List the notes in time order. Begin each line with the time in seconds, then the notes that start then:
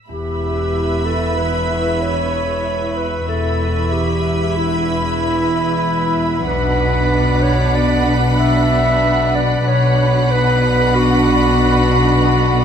0.09 E1 E2 E4 G4 B4 E5 B5
0.42 E2
0.73 E2 C#6
1.05 A4
1.37 E3 B4 E6
1.69 E2
2.01 C#5
2.34 E2
2.97 E2 B4
3.28 E1 E2 E4 A4 B4 E5 B5
3.93 G4
4.56 E3 E4
4.78 D6
4.88 E2
5.19 E2
5.51 E2
6.16 E2
6.46 B1 B2 D4 B4 F#5 B5 F#6 B6
6.79 B2
7.42 B2 C#5
7.75 B3 D5
8.07 B2
8.39 B2 E5
9.03 B2
9.35 B2 D5
9.66 B1 B2 D4 B4 C#5 F#5 B5
10.30 B2 B4
10.95 B3 F#4
11.27 B2
11.58 B2
11.90 B2
12.55 B2